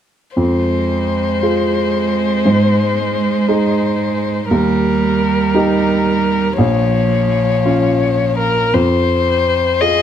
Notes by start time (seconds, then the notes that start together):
0.36 F2 G#3 C5
1.43 F4 G#4
2.46 G#2
3.48 D#4 G#4
4.51 D#2 G3 A#4
5.54 D#4 G4
6.58 A#1 F3 C#5
7.65 C#4 F4
8.38 A#4
8.74 F2 C5
9.80 F4 G#4 D#5